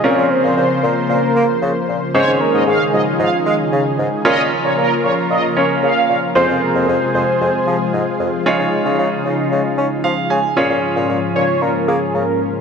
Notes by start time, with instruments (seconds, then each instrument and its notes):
Already playing: analog synth pad F3 F4
0.04 bassoon A#2, analog synth pad C#3 A#3 C5, grand piano C4 C#4 F4 A#4, analog synth lead C#5
0.17 bassoon A#2
0.30 analog synth lead C5
0.43 bassoon A#2
0.56 bassoon A#2
0.83 bassoon A#2, analog synth lead A#4
1.09 bassoon A#2, analog synth lead A#4
1.35 bassoon A#3
1.62 bassoon C#3
1.88 bassoon A#2
2.14 bassoon G#2, analog synth pad C#3 D#3 G#3 D#4 G#4, grand piano C#4 D#4 G#4 C#5, analog synth lead C5, analog polysynth C#5
2.28 bassoon G#2
2.41 analog synth lead A#4
2.54 bassoon G#2, analog polysynth D#5
2.67 bassoon G#2, analog synth lead G#4, analog polysynth F5
2.93 bassoon G#2, analog synth lead F4, analog polysynth D#5
3.20 bassoon G#2, analog polysynth F5
3.46 bassoon G#3, analog polysynth F5
3.72 bassoon C#3
3.99 bassoon G#2
4.25 bassoon A#2, analog synth pad F3 A#3 F4 A#4, grand piano C#4 F4 A#4 C#5, analog polysynth D#5
4.38 bassoon A#2
4.64 bassoon A#2, analog polysynth C#5
4.77 bassoon A#2, analog polysynth A#4
5.04 bassoon A#2, analog polysynth C#5
5.30 bassoon A#2, analog polysynth D#5
5.57 grand piano C#4 F4 A#4 C#5, analog polysynth C#5
5.83 bassoon C#3, analog polysynth F5
6.09 bassoon A#2
6.35 bassoon F2, analog synth pad C3 G#3 F4 G#4, grand piano C4 F4 G#4 C5, analog synth lead C5
6.49 bassoon F2
6.62 analog synth lead A#4
6.75 bassoon F2
6.88 bassoon F2, analog synth lead C5
7.14 bassoon F2, analog synth lead C5
7.41 bassoon F2
7.67 bassoon F3
7.93 bassoon G#2
8.20 bassoon F2
8.46 bassoon C#3, analog synth pad C#3 D#4, grand piano D#4 F4 G#4 C#5
8.59 bassoon C#3
8.85 bassoon C#3
8.99 bassoon C#3
9.25 bassoon C#3
9.51 bassoon C#3
9.78 bassoon C#4
10.04 bassoon F3, grand piano F5
10.30 bassoon C#3, grand piano G#5
10.56 analog synth pad G#2 C#3 F3 C#4 F4, bassoon A#2, grand piano C#4 F4 G#4 C#5
10.70 bassoon A#2
10.96 bassoon A#2
11.09 bassoon A#2
11.35 bassoon A#2, analog synth lead C#5
11.62 bassoon A#2, analog synth lead A#4
11.88 bassoon A#3, analog synth lead G#4
12.14 bassoon C#3, analog synth lead A#4